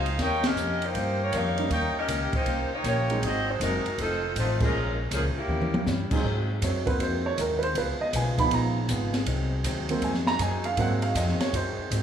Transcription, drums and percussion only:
0.06 ride
0.19 kick, snare, ride
0.43 snare, ride
0.57 hi-hat pedal
0.82 ride
0.95 kick, ride
1.32 kick, hi-hat pedal, ride
1.58 ride
1.70 kick, ride
2.08 kick, hi-hat pedal, ride
2.33 kick, ride
2.46 kick, ride
2.84 kick, hi-hat pedal, ride
3.10 ride
3.22 kick, ride
3.60 kick, hi-hat pedal, ride
3.86 ride
3.98 kick, ride
4.36 kick, hi-hat pedal, ride
4.60 kick, crash
5.11 kick, hi-hat pedal, ride
5.49 mid tom
5.62 mid tom
5.74 mid tom
5.86 snare, hi-hat pedal
6.11 kick, crash
6.24 kick
6.62 kick, hi-hat pedal, ride
6.87 kick, ride
7.00 kick, ride
7.37 kick, hi-hat pedal, ride
7.63 ride
7.75 kick, ride
8.13 kick, hi-hat pedal, ride
8.38 kick, ride
8.51 kick, ride
8.89 kick, hi-hat pedal, ride
9.14 snare, ride
9.26 kick, ride
9.64 kick, hi-hat pedal, ride
9.89 ride
10.02 kick, ride
10.14 snare
10.27 snare
10.39 kick, hi-hat pedal, ride
10.64 ride
10.77 kick, ride
11.02 ride
11.15 kick, hi-hat pedal, ride
11.28 snare
11.40 snare, ride
11.53 kick, ride
11.91 kick, hi-hat pedal, ride

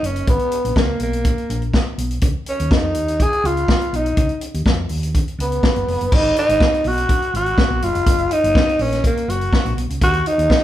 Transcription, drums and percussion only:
0.04 closed hi-hat
0.16 closed hi-hat
0.27 kick, closed hi-hat
0.39 closed hi-hat
0.52 closed hi-hat
0.65 closed hi-hat
0.76 kick, snare
1.00 closed hi-hat
1.13 closed hi-hat
1.25 kick, closed hi-hat
1.38 closed hi-hat
1.50 closed hi-hat
1.62 closed hi-hat
1.74 kick, snare
1.98 closed hi-hat
2.11 closed hi-hat
2.21 kick, closed hi-hat
2.46 closed hi-hat
2.60 closed hi-hat
2.71 kick, snare
2.95 closed hi-hat
3.08 closed hi-hat
3.20 kick, closed hi-hat
3.33 closed hi-hat
3.45 closed hi-hat
3.57 closed hi-hat
3.68 kick, snare
3.81 closed hi-hat
3.94 closed hi-hat
4.06 closed hi-hat
4.17 kick, closed hi-hat
4.29 closed hi-hat
4.41 closed hi-hat
4.54 closed hi-hat
4.66 kick, snare
4.89 open hi-hat
5.03 closed hi-hat
5.15 kick, closed hi-hat
5.28 closed hi-hat
5.40 closed hi-hat
5.52 closed hi-hat
5.63 kick, snare
5.76 closed hi-hat
5.88 open hi-hat
6.01 closed hi-hat
6.12 kick, crash
6.24 closed hi-hat
6.36 closed hi-hat
6.49 closed hi-hat
6.60 kick, snare
6.74 closed hi-hat
6.84 open hi-hat
6.98 closed hi-hat
7.09 kick, closed hi-hat
7.22 closed hi-hat
7.35 closed hi-hat
7.46 closed hi-hat
7.58 kick, snare
7.82 closed hi-hat
7.95 closed hi-hat
8.06 kick, closed hi-hat
8.18 closed hi-hat
8.31 closed hi-hat
8.44 closed hi-hat
8.55 kick, snare
8.69 closed hi-hat
8.79 open hi-hat
8.92 snare, closed hi-hat
9.04 kick, closed hi-hat
9.17 closed hi-hat
9.30 closed hi-hat
9.41 closed hi-hat
9.53 kick, snare
9.66 closed hi-hat
9.78 closed hi-hat
9.90 closed hi-hat
10.01 kick, closed hi-hat
10.13 closed hi-hat
10.26 closed hi-hat
10.39 closed hi-hat
10.50 kick, snare

